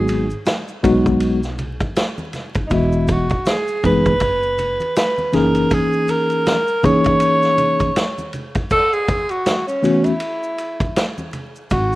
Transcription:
0.00 0.32 G#1 loud
0.00 0.26 F#3 medium
0.00 0.26 G#3 medium
0.00 0.26 B3 medium
0.00 0.26 D#4 medium
0.00 0.26 F#4 medium
0.00 0.43 G#4 medium
0.08 ride medium
0.08 maracas soft
0.30 maracas soft
0.46 snare loud
0.46 hi-hat pedal medium
0.46 ride medium
0.46 high conga soft
0.46 maracas medium
0.68 maracas medium
0.83 1.77 B1 medium
0.83 1.38 F#3 medium
0.83 1.39 G#3 medium
0.83 1.39 B3 medium
0.83 1.39 D#4 medium
0.83 1.39 F#4 loud
0.83 kick loud
0.83 ride medium
0.83 low conga medium
0.83 maracas soft
1.06 kick medium
1.06 high conga medium
1.06 maracas soft
1.20 ride medium
1.20 maracas medium
1.43 snare soft
1.43 maracas medium
1.58 ride medium
1.58 low conga medium
1.58 maracas soft
1.80 kick medium
1.80 ride soft
1.80 high conga medium
1.80 maracas soft
1.96 snare loud
1.96 hi-hat pedal medium
1.96 ride medium
1.96 maracas medium
2.18 high conga medium
2.18 maracas soft
2.33 snare soft
2.33 ride medium
2.33 low conga medium
2.33 maracas soft
2.55 2.68 F1 medium
2.55 kick loud
2.55 ride soft
2.55 maracas soft
2.67 3.26 E3 medium
2.67 3.26 G#3 medium
2.67 3.26 B3 medium
2.67 2.75 D#4 medium
2.67 kick medium
2.67 ride medium
2.67 maracas medium
2.71 3.32 E1 loud
2.71 3.13 E4 medium
2.71 3.26 F#4 medium
2.71 3.26 D#5 medium
2.92 maracas soft
3.08 kick medium
3.08 ride medium
3.08 maracas soft
3.12 3.48 F#4 medium
3.29 kick medium
3.29 ride soft
3.29 maracas soft
3.45 3.83 G#4 medium
3.45 snare loud
3.45 hi-hat pedal medium
3.45 ride medium
3.45 high conga soft
3.45 maracas medium
3.68 maracas medium
3.83 4.77 F#1 loud
3.83 4.12 E3 medium
3.83 4.12 G#3 medium
3.83 4.12 B3 medium
3.83 4.12 D#4 medium
3.83 4.12 G#4 medium
3.83 4.93 B4 loud
3.83 kick medium
3.83 ride medium
3.83 low conga medium
3.83 maracas soft
4.05 kick medium
4.05 high conga medium
4.05 maracas soft
4.20 kick medium
4.20 ride medium
4.20 maracas medium
4.43 maracas medium
4.58 ride medium
4.58 low conga medium
4.58 maracas soft
4.80 ride soft
4.80 high conga medium
4.80 maracas soft
4.96 5.37 B4 medium
4.96 snare loud
4.96 hi-hat pedal medium
4.96 ride medium
4.96 maracas medium
5.18 high conga medium
5.18 maracas soft
5.33 5.64 F#1 medium
5.33 6.54 E3 medium
5.33 6.55 A#3 medium
5.33 6.55 C#4 medium
5.33 6.55 D#4 medium
5.33 6.55 G#4 medium
5.33 5.75 A#4 loud
5.33 snare soft
5.33 ride medium
5.33 low conga medium
5.33 maracas soft
5.55 ride soft
5.55 maracas soft
5.70 6.12 G#4 loud
5.70 kick medium
5.70 ride medium
5.70 maracas medium
5.93 maracas soft
6.08 6.87 A#4 loud
6.08 ride medium
6.08 high conga soft
6.08 maracas soft
6.30 ride soft
6.30 maracas soft
6.46 snare loud
6.46 hi-hat pedal medium
6.46 ride medium
6.46 high conga soft
6.46 maracas medium
6.68 maracas medium
6.83 7.90 E3 medium
6.83 7.90 A#3 medium
6.83 7.90 C#4 medium
6.83 7.90 D#4 medium
6.83 7.90 G#4 medium
6.83 8.34 C#5 loud
6.83 kick medium
6.83 ride medium
6.83 low conga medium
6.83 maracas soft
7.04 kick medium
7.04 ride soft
7.04 high conga medium
7.04 maracas soft
7.20 ride medium
7.20 maracas medium
7.43 snare soft
7.43 maracas medium
7.58 ride medium
7.58 low conga medium
7.58 maracas soft
7.80 kick medium
7.80 ride soft
7.80 high conga medium
7.80 maracas soft
7.96 snare loud
7.96 hi-hat pedal medium
7.96 ride medium
7.96 maracas medium
8.18 high conga medium
8.18 maracas soft
8.33 ride soft
8.33 low conga medium
8.33 maracas soft
8.55 kick loud
8.55 ride soft
8.55 maracas soft
8.70 8.95 A4 loud
8.70 kick medium
8.70 crash medium
8.70 maracas medium
8.93 9.32 G#4 medium
8.93 maracas soft
9.08 kick medium
9.08 ride medium
9.08 high conga soft
9.08 maracas soft
9.29 9.67 F#4 medium
9.29 ride soft
9.29 maracas soft
9.46 snare loud
9.46 hi-hat pedal medium
9.46 ride medium
9.46 high conga soft
9.46 maracas medium
9.67 10.06 C#4 medium
9.67 maracas medium
9.82 10.11 E3 medium
9.82 10.11 A3 medium
9.82 10.12 B3 medium
9.82 10.12 C#4 medium
9.82 10.12 F#4 medium
9.82 ride medium
9.82 low conga medium
9.82 maracas soft
10.04 11.18 E4 medium
10.04 ride soft
10.04 high conga medium
10.04 maracas soft
10.20 ride medium
10.20 maracas medium
10.43 maracas soft
10.58 ride medium
10.58 maracas soft
10.80 kick medium
10.80 ride soft
10.80 high conga medium
10.80 maracas soft
10.96 snare loud
10.96 hi-hat pedal medium
10.96 ride medium
10.96 maracas medium
11.18 high conga medium
11.18 maracas soft
11.33 ride soft
11.33 low conga medium
11.33 maracas soft
11.56 maracas soft
11.70 11.95 G#1 loud
11.70 11.95 F#4 medium
11.70 kick medium
11.70 ride medium
11.70 maracas medium

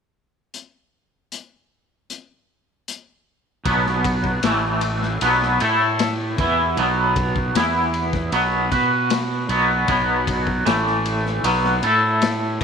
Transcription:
0.54 closed hi-hat medium
1.32 closed hi-hat medium
2.10 closed hi-hat medium
2.88 closed hi-hat medium
3.65 4.39 B1 medium
3.65 4.42 B2 medium
3.65 4.42 F#3 medium
3.65 4.42 B3 loud
3.65 kick loud
3.65 ride medium
3.86 snare soft
4.04 kick medium
4.04 ride medium
4.24 kick medium
4.43 5.17 A1 loud
4.43 5.20 A2 medium
4.43 5.20 E3 loud
4.43 5.20 A3 medium
4.43 snare loud
4.43 ride medium
4.81 ride medium
5.02 snare soft
5.21 5.57 B1 medium
5.21 5.59 B2 loud
5.21 5.59 F#3 medium
5.21 5.59 B3 medium
5.21 ride loud
5.42 snare soft
5.60 6.34 A2 medium
5.60 6.37 A3 medium
5.60 6.37 E4 medium
5.60 6.37 A4 medium
5.60 ride medium
5.99 snare loud
5.99 ride medium
6.38 6.74 E2 medium
6.38 6.76 E3 medium
6.38 6.77 B3 medium
6.38 6.77 E4 loud
6.38 kick loud
6.38 ride medium
6.77 7.51 B1 medium
6.77 7.54 B2 medium
6.77 7.54 F#3 medium
6.77 7.55 B3 loud
6.77 ride medium
7.16 kick medium
7.16 ride medium
7.36 kick medium
7.55 8.29 E2 medium
7.55 8.32 E3 medium
7.55 8.32 B3 medium
7.55 8.32 E4 medium
7.55 snare loud
7.55 ride loud
7.94 ride medium
8.13 kick medium
8.13 snare soft
8.32 8.68 B1 loud
8.32 8.70 B2 medium
8.32 8.70 F#3 medium
8.32 8.71 B3 medium
8.32 ride medium
8.72 9.45 B2 medium
8.72 9.48 B3 medium
8.72 9.48 F#4 medium
8.72 9.49 B4 medium
8.72 kick medium
8.72 ride medium
9.10 snare loud
9.10 ride medium
9.49 9.85 B1 medium
9.49 9.87 B2 medium
9.49 9.87 F#3 medium
9.49 9.87 B3 loud
9.49 ride medium
9.88 10.62 B1 medium
9.88 10.65 B2 medium
9.88 10.65 F#3 medium
9.88 10.65 B3 medium
9.88 kick loud
9.88 ride medium
10.27 kick medium
10.27 ride medium
10.47 kick medium
10.65 11.40 A1 loud
10.65 11.42 A2 medium
10.65 11.43 E3 loud
10.65 11.43 A3 medium
10.65 snare loud
10.65 ride medium
10.87 snare soft
11.05 ride medium
11.26 snare soft
11.43 11.80 B1 medium
11.43 11.82 B2 medium
11.43 11.82 F#3 medium
11.43 11.82 B3 loud
11.43 ride loud
11.64 snare soft
11.83 12.57 A2 medium
11.83 12.60 A3 medium
11.83 12.60 E4 medium
11.83 12.60 A4 loud
11.83 ride medium
12.22 snare loud
12.22 ride medium
12.61 kick loud

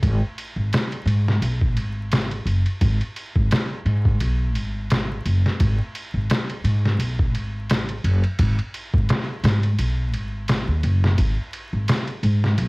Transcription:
0.03 0.20 G#1 loud
0.03 kick loud
0.03 ride medium
0.38 ride medium
0.56 0.70 G#1 medium
0.73 snare loud
0.73 ride medium
0.92 ride soft
1.06 1.37 G#2 loud
1.06 ride medium
1.28 snare soft
1.42 1.76 B1 medium
1.42 ride medium
1.61 kick medium
1.76 2.43 G#1 loud
1.76 ride medium
2.11 snare loud
2.11 ride medium
2.31 ride soft
2.45 2.63 F#1 medium
2.45 ride medium
2.66 ride soft
2.81 2.98 G#1 loud
2.81 kick loud
2.81 ride medium
3.01 ride soft
3.16 ride medium
3.36 3.49 G#1 medium
3.36 kick loud
3.51 snare loud
3.51 ride loud
3.85 4.17 G#2 loud
3.85 ride medium
4.05 kick medium
4.20 4.55 B1 medium
4.20 ride medium
4.55 5.22 G#1 loud
4.55 ride medium
4.90 snare loud
4.90 ride medium
5.25 5.42 F#1 medium
5.25 ride medium
5.46 snare medium
5.60 5.77 G#1 loud
5.60 kick loud
5.60 ride medium
5.95 ride medium
6.14 6.28 G#1 medium
6.30 snare loud
6.30 ride medium
6.50 ride soft
6.64 6.96 G#2 loud
6.64 ride medium
6.86 snare medium
6.99 7.33 B1 medium
6.99 ride medium
7.19 kick loud
7.33 8.01 G#1 medium
7.33 ride medium
7.70 snare loud
7.70 ride medium
7.89 ride soft
8.04 8.21 F#1 medium
8.04 ride medium
8.24 ride soft
8.39 8.56 G#1 loud
8.39 kick loud
8.39 ride medium
8.59 ride soft
8.74 ride medium
8.94 9.07 G#1 medium
8.94 kick loud
9.09 snare loud
9.09 ride medium
9.43 9.75 G#2 loud
9.43 snare medium
9.43 ride medium
9.63 ride soft
9.79 10.13 B1 medium
9.79 ride medium
10.13 10.67 G#1 medium
10.13 ride medium
10.48 snare loud
10.48 ride medium
10.68 10.82 D#2 medium
10.83 11.15 F#1 loud
10.83 ride medium
11.04 snare medium
11.18 11.36 G#1 loud
11.18 kick loud
11.18 ride medium
11.53 ride medium
11.73 11.86 G#1 medium
11.88 snare loud
11.88 ride loud
12.07 ride soft
12.23 12.54 G#2 loud
12.23 ride medium
12.44 snare soft
12.58 12.68 B1 medium
12.58 ride medium

